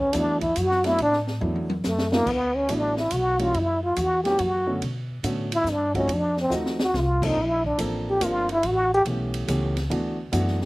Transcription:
Already playing: D2
0.00 C#4
0.13 E2 F#3 A3 B3 D4 E4, hi-hat pedal, ride
0.41 E4, kick, ride
0.56 F#2 F#4, hi-hat pedal, ride
0.71 snare
0.84 F#3 A3 B3 D4 E4, snare, ride
0.98 A2, ride
1.03 D4
1.13 snare
1.27 snare
1.41 E2 F#3 A3 B3 D4 E4, high tom
1.56 high tom
1.70 high tom
1.84 F#2 A3, snare, hi-hat pedal
1.98 snare
2.12 F#3 A3 A#3 B3 D4 E4, snare
2.26 D2 B3, kick, crash
2.56 C#4
2.68 A1 F#3 A3 B3 D4 E4, hi-hat pedal, ride
2.97 E4, snare
3.11 B1 F#4, hi-hat pedal, ride
3.39 E3 G3 A#3 C#4 F4 F#4, ride
3.54 F#2 E4, ride
3.84 F4
3.96 E2 F#4, hi-hat pedal, ride
4.24 E3 G3 A#3 C#4 F#4 G4, snare, ride
4.39 F#2 F#4, ride
4.66 D3 A3 B3 C#4 F#4
4.82 B2, ride
5.23 A2 D3 A3 B3 C#4 F#4, hi-hat pedal, ride
5.52 E4, ride
5.64 G2, snare, hi-hat pedal
5.72 D4
5.95 F3 A3 C4 C#4 D#4 F#4, kick, ride
6.08 F2, ride
6.14 D4
6.37 snare
6.41 C4
6.50 D#2 F3 A3 C4 D#4 F#4, snare, hi-hat pedal
6.66 snare
6.79 F#4, snare
6.94 C2 F4, snare
7.22 F3 A#3 C4 D4 A4, kick, crash
7.26 D#4
7.35 A#1
7.42 E4
7.64 D4, kick
7.78 A1 F3 A#3 C4 D4 A4, hi-hat pedal, ride
8.10 G4
8.20 G1 F3 A#3 C4 D4 F4 A#4, hi-hat pedal, ride
8.49 E4, ride
8.63 A1, ride
8.68 F#4
8.94 G4
9.05 B1 E3 A3 B3 C#4 G4, ride
9.34 ride
9.48 C#2 E3 A3 B3 C#4 G4, hi-hat pedal, ride
9.77 snare, ride
9.90 D2 E3 A3 B3 D4 F#4, ride
10.32 F#2 E3 A3 B3 D4 F#4, hi-hat pedal, ride
10.48 snare
10.61 snare

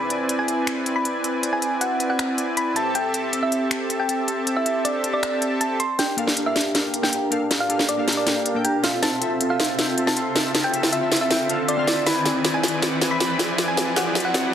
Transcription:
Already playing: C4 E4 G#4 B4 D5 G#5 B5
0.10 closed hi-hat
0.29 closed hi-hat
0.39 G#5
0.48 closed hi-hat
0.67 finger snap, closed hi-hat
0.86 closed hi-hat
0.96 B5
1.05 closed hi-hat
1.24 closed hi-hat
1.43 closed hi-hat
1.53 G#5
1.62 closed hi-hat
1.81 F#5, closed hi-hat
2.00 closed hi-hat
2.10 F#5
2.19 finger snap, closed hi-hat
2.38 closed hi-hat
2.57 B5, closed hi-hat
2.74 C4 G4 A4 E5 A5, closed hi-hat
2.95 G5, closed hi-hat
3.14 closed hi-hat
3.33 closed hi-hat
3.43 E5
3.52 closed hi-hat
3.71 finger snap, closed hi-hat
3.90 closed hi-hat
4.00 G5
4.09 closed hi-hat
4.28 closed hi-hat
4.47 closed hi-hat
4.57 E5
4.66 closed hi-hat
4.85 D5, closed hi-hat
5.04 closed hi-hat
5.13 D5
5.23 finger snap, closed hi-hat
5.42 closed hi-hat
5.61 A5, closed hi-hat
5.80 C6, closed hi-hat
5.99 D4 G4 A#4 F5 G5 A5, snare, closed hi-hat, riser
6.17 A#3 D4 G4 A4 A#4 F5 A5, closed hi-hat
6.27 snare
6.37 D4 G4 A#4 F5 A5, closed hi-hat
6.45 A#3 G4 A4 E5 F5
6.56 D4 G4 A#4 A#5, snare, closed hi-hat
6.61 closed hi-hat
6.65 D4 G4 A#4 F5 A5
6.74 A#3 D4 G4 A4 A#4 F5 G5, snare, closed hi-hat
6.94 D4 G4 A#4 F5 A5, closed hi-hat
7.02 A#3 G4 A4 G5, snare
7.13 D4 G4 A#4 F5 A#5, closed hi-hat
7.31 A#3 D4 G4 A4 A#4 F5 A5, closed hi-hat
7.51 D4 G4 A#4 F5 A5, snare, closed hi-hat
7.60 F5
7.69 A#3 D4 G4 A4 A#4 F5 A5, closed hi-hat
7.79 snare
7.89 D4 G4 A#4 D5 F5 A5, closed hi-hat
7.97 A#3 G4 A4 F5
8.08 D4 G4 A#4 F5 A#5, snare, closed hi-hat
8.12 closed hi-hat
8.17 D4 G4 A#4 D5 F5 A5
8.26 A#3 D4 G4 A4 A#4 F5 G5, snare, closed hi-hat
8.46 D4 G4 A#4 F5 A5, closed hi-hat
8.54 A#3 G4 A4 G5
8.65 D4 G4 A#4 F5 G5 A#5, closed hi-hat
8.83 C4 F4 A4 E5 F5 A5, snare, closed hi-hat
9.03 C4 F4 A4 E5 A5, snare, closed hi-hat
9.20 C4 F4 A4 E5 A5, closed hi-hat
9.41 C4 F4 A4 E5 A5, closed hi-hat
9.49 C4 F4 A4 E5 F5
9.60 C4 F4 A4 E5 C6, snare, closed hi-hat
9.64 closed hi-hat
9.69 C4 F4 A4 E5 A5
9.78 C4 F4 A4 E5 G5, snare, closed hi-hat
9.98 C4 F4 A4 E5 A5, closed hi-hat
10.06 C4 F4 A4 F5 A5, snare
10.17 C4 F4 A4 E5 C6, closed hi-hat
10.34 C4 F4 A4 E5 A5, snare, closed hi-hat
10.54 C4 F4 A4 E5 A5, snare, closed hi-hat
10.64 G5
10.72 C4 F4 A4 E5 A5, closed hi-hat
10.83 snare
10.92 C4 F4 A4 E5 A5, closed hi-hat
11.01 C4 F4 A4 E5
11.11 C4 F4 A4 E5 C6, snare, closed hi-hat
11.16 closed hi-hat
11.21 C4 F4 A4 E5 A5
11.29 C4 F4 A4 E5 G5, snare, closed hi-hat
11.48 C4 F4 A4 E5 F5 A5, closed hi-hat
11.68 C4 F4 A4 D5 E5 C6, closed hi-hat
11.77 C4 F4 A4 F5
11.86 C4 F4 A4 D5 E5 A5, snare, closed hi-hat
12.06 C4 E4 B4 D5 G#5 B5, snare, closed hi-hat
12.24 C4 E4 G#4 B4 D5 G#5, snare, closed hi-hat
12.44 C4 E4 B4 D5 G#5, snare, closed hi-hat
12.53 C4 E4 G#4 D5 G#5
12.63 C4 E4 B4 D5 B5, snare, closed hi-hat
12.68 closed hi-hat
12.73 C4 E4 B4 D5 G#5
12.81 C4 E4 G#4 B4 D5 F#5, snare, closed hi-hat
13.01 C4 E4 B4 D5 G#5, snare, closed hi-hat
13.10 C4 E4 G#4 E5 B5
13.20 C4 E4 B4 D5 B5, snare, closed hi-hat
13.38 C4 E4 G#4 B4 D5 G#5, snare, closed hi-hat
13.58 C4 E4 B4 D5 G#5, snare, closed hi-hat
13.68 G#5
13.76 C4 E4 G#4 B4 D5 G#5, snare, closed hi-hat
13.96 C4 E4 B4 D5 F#5 G#5, snare, closed hi-hat
14.05 C4 E4 G#4 D5
14.15 C4 E4 B4 D5 B5, snare, closed hi-hat
14.20 closed hi-hat
14.25 C4 E4 B4 D5 F#5 G#5
14.33 C4 E4 G#4 B4 D5 F#5, snare, closed hi-hat

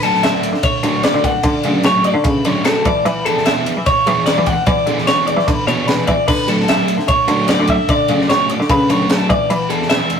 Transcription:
Already playing: D3
0.03 F#3 A3 D4 F#4 A4, ride
0.14 snare
0.23 F#3 A3 D4 F#4 E5, snare, ride
0.43 ride
0.53 D3, snare
0.63 C#5, kick, ride
0.83 D3 F#3 A3 D4 F#4, ride
1.03 F#3 A3 D4 F#4 D5, snare, ride
1.15 D3
1.24 F#5, kick, ride
1.43 D3 D5, kick, ride
1.63 C#3 F#3 A3 D4 F#4, ride
1.83 F#3 A3 D4 C#5, snare, ride
1.87 F#4
2.04 D5, ride
2.14 D3
2.24 C#3 B4, kick, ride
2.45 D3 F#3 A3 D4 F#4 C#5, ride
2.65 F#3 A3 D4 F#4 A4, snare, ride
2.85 E3 D5, kick, ride
3.05 E3 B4, ride
3.25 E3 B3 D4 G#4 A4, ride
3.37 snare
3.46 E3 B3 D4 G#4 E5, snare, ride
3.66 ride
3.77 E3
3.86 C#5, kick, ride
4.06 E3 B3 D4 G#4, ride
4.26 E3 B3 D4 G#4 D5, snare, ride
4.38 E3
4.46 F#5, kick, ride
4.66 E3 D5, kick, ride
4.87 D3 E3 B3 D4 G#4, ride
4.98 snare
5.07 E3 B3 D4 G#4 C#5, snare, ride
5.27 D5, ride
5.37 E3, snare
5.47 D3 B4, kick, ride
5.67 B2 E3 B3 D4 G#4 C#5, ride
5.87 E3 B3 D4 G#4 B4, snare, ride
6.07 E3 D5, kick, ride
6.28 D3 B4, kick, crash
6.48 F#3 A3 D4 F#4 A4, ride
6.60 snare
6.68 F#3 A3 D4 F#4 E5, snare, ride
6.88 ride
6.98 D3, snare
7.08 C#5, kick, ride
7.28 D3 F#3 A3 D4 F#4, ride
7.48 F#3 A3 D4 F#4 D5, snare, ride
7.60 D3
7.67 E5, kick, ride
7.89 D3 D5, kick, ride
8.08 C#3 F#3 A3 D4 F#4, ride
8.21 snare
8.30 F#3 A3 D4 F#4 C#5, snare, ride
8.49 D5, ride
8.60 D3, snare
8.70 C#3 B4, kick, ride
8.89 D3 F#3 A3 D4 F#4 C#5, ride
9.09 F#3 A3 D4 F#4 A4, snare, ride
9.30 E3 D5, kick, ride
9.50 E3 B4, ride
9.70 E3 B3 D4 G#4 A4, ride
9.82 snare
9.90 E3 B3 D4 G#4 E5, snare, ride
10.10 ride

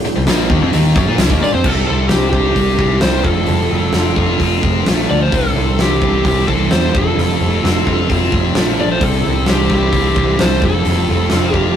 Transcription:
Already playing: C4 G4
0.05 muted distorted electric guitar stroke, muted picked electric bass stroke, tambourine
0.16 C2 C3 G3
0.27 A#1 A#2 F3 A#3, snare, open hi-hat, tambourine
0.50 D#2 D#3 A#3, kick
0.62 F2 F3 C4
0.73 D#2 D#3 A#3 D#4, open hi-hat, tambourine
0.96 F#2 F#3 C#4, kick, tambourine
1.07 A#2 A#3 F4
1.18 C2 C3 G3, snare, open hi-hat, tambourine
1.29 D#2 D#3 A#3, kick
1.41 A#2 A#3 F4 D5, tambourine
1.52 F2 F3 C4 C5
1.63 C2 C3 G3 C4 E4 G4 A4, kick, crash
1.85 G3 C4 E4 G4 A4
1.89 C2
2.09 C2 C3 G3 C4 E4 G4, snare, open hi-hat
2.31 C2 C4 E4 G4, kick
2.54 C2 G3 C4, kick, open hi-hat
2.78 C2 C3 E3, kick
3.01 C2 G3 C4 E4 G4 C5, snare, open hi-hat
3.23 F1 F2 F3 C4 F4 A4, kick
3.46 F1 F2 F3 C4 F4 A4, open hi-hat
3.70 F1 A3 C4 F4 A4
3.92 F1 F3 C4 F4 A4, snare, open hi-hat
4.14 F1 C4 F4 A4, kick
4.39 F1 A3 C4, kick, open hi-hat
4.63 F1 F3, kick
4.84 A#1 F3 A3 C4 F4 A4, snare, open hi-hat
5.07 D2 F3 C4 F4 A4 D5
5.23 C5
5.29 C2 C3 G3 C4 E4 G4 A4, kick, open hi-hat
5.54 C2 G3 C4 E4 G4
5.78 C2 E3 G3 C4 E4 G4, snare, open hi-hat
6.00 C2 C4 E4 G4, kick
6.24 C2 G3 C4 G4, kick, open hi-hat
6.48 C2 E3 A4, kick
6.70 E2 G3 C4 E4 G4 C5, snare, open hi-hat
6.93 F1 F2 F3 C4 F4 A4, kick
6.98 A4
7.16 F1 F2 F3 C4 F4 A4, open hi-hat
7.39 F1 A3 C4 F4 A4
7.63 F1 F3 C4 F4 A4, snare, open hi-hat
7.85 F1 C4 F4 A4, kick
8.07 F1 A3 C4, kick, open hi-hat
8.32 F1 F3, kick
8.55 A#1 F3 A3 C4 F4 A4, snare, open hi-hat
8.76 F3 C4 F4 A4
8.81 A#1 D5
8.92 C5
9.00 C2 C3 G3 C4 E4 G4 A4, kick, open hi-hat
9.23 C2 G3 C4 E4 G4
9.46 C2 E3 G3 C4 E4 G4, snare, open hi-hat
9.50 G4
9.69 C2 C4 E4 G4, kick, snare
9.74 G4
9.92 C2 G3 C4, kick, open hi-hat
10.16 C2 E3, kick
10.37 C2 G3 C4 E4 C5, snare, open hi-hat
10.42 G4
10.61 F1 F2 F3 C4 F4 A4, kick
10.65 C4 F4 A4
10.84 F1 F2 F3 C4 F4 A4, open hi-hat
11.08 F1 A3 C4 F4 A4
11.30 F1 F3 C4 F4 A4, snare, open hi-hat
11.53 F1 C4 F4 G4 A4, kick

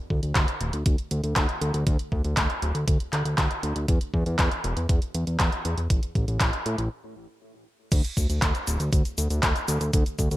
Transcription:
0.10 D2, kick
0.23 D2, closed hi-hat
0.35 D2, kick, clap, closed hi-hat
0.48 closed hi-hat
0.61 D1, closed hi-hat
0.73 D2, closed hi-hat
0.86 D2, kick, closed hi-hat
0.98 closed hi-hat
1.11 D2, closed hi-hat
1.24 D2, closed hi-hat
1.36 D2, kick, clap, closed hi-hat
1.49 closed hi-hat
1.61 D2, closed hi-hat
1.74 D2, closed hi-hat
1.87 D2, kick, closed hi-hat
1.99 closed hi-hat
2.12 D2, kick
2.24 D2, closed hi-hat
2.37 D2, kick, clap, closed hi-hat
2.50 closed hi-hat
2.62 D1, closed hi-hat
2.75 D2, closed hi-hat
2.88 D2, kick, closed hi-hat
3.00 closed hi-hat
3.13 D2, clap, closed hi-hat
3.25 D2, closed hi-hat
3.38 D2, kick, clap, closed hi-hat
3.51 closed hi-hat
3.63 D2, closed hi-hat
3.76 D2, closed hi-hat
3.88 E2, kick, closed hi-hat
4.01 closed hi-hat
4.14 E2, kick
4.26 E2, closed hi-hat
4.39 E2, kick, clap, closed hi-hat
4.52 closed hi-hat
4.64 E1, closed hi-hat
4.77 E2, closed hi-hat
4.89 E2, kick, closed hi-hat
5.02 closed hi-hat
5.14 E2, closed hi-hat
5.27 E2, closed hi-hat
5.40 E2, kick, clap, closed hi-hat
5.52 closed hi-hat
5.65 E2, closed hi-hat
5.78 E2, closed hi-hat
5.90 A1, kick, closed hi-hat
6.03 closed hi-hat
6.15 A1, kick, closed hi-hat
6.28 A1, closed hi-hat
6.41 A1, kick, clap, closed hi-hat
6.53 closed hi-hat
6.66 A2, closed hi-hat
6.78 A1, closed hi-hat
7.92 D2, kick, closed hi-hat, crash, cabasa
8.04 closed hi-hat, cabasa
8.17 D2, kick, closed hi-hat, cabasa
8.30 D2, closed hi-hat, cabasa
8.42 D2, kick, clap, closed hi-hat, cabasa
8.55 closed hi-hat, cabasa
8.67 D1, closed hi-hat, cabasa
8.80 D2, closed hi-hat, cabasa
8.93 D2, kick, closed hi-hat, cabasa
9.05 closed hi-hat, cabasa
9.18 D2, closed hi-hat, cabasa
9.30 D2, closed hi-hat, cabasa
9.43 D2, kick, clap, closed hi-hat, cabasa
9.56 closed hi-hat, cabasa
9.68 D2, closed hi-hat, cabasa
9.81 D2, closed hi-hat, cabasa
9.93 D2, kick, closed hi-hat, cabasa
10.06 closed hi-hat, cabasa
10.19 D2, kick, closed hi-hat, cabasa
10.31 D2, closed hi-hat, cabasa

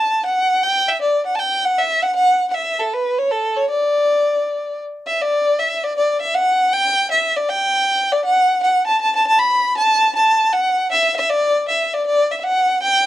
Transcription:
Already playing: A5
0.25 F#5
0.63 G5
0.88 E5
1.01 D5
1.26 F#5
1.35 A5
1.39 G5
1.64 F#5
1.78 E5
2.02 F#5
2.15 F#5
2.50 F#5
2.54 E5
2.79 A4
2.93 B4
3.18 C#5
3.31 A4
3.56 C#5
3.69 D5
5.07 E5
5.21 D5
5.59 E5
5.83 D5
5.97 D5
6.21 E5
6.35 F#5
6.73 G5
7.11 E5
7.36 D5
7.49 G5
8.12 D5
8.24 F#5
8.63 F#5
8.87 A5
9.01 A5
9.15 A5
9.27 A5
9.39 B5
9.77 A5
10.15 A5
10.53 F#5
10.91 E5
11.16 E5
11.30 D5
11.68 E5
11.93 D5
12.06 D5
12.31 E5
12.40 E5 F#5
12.82 G5

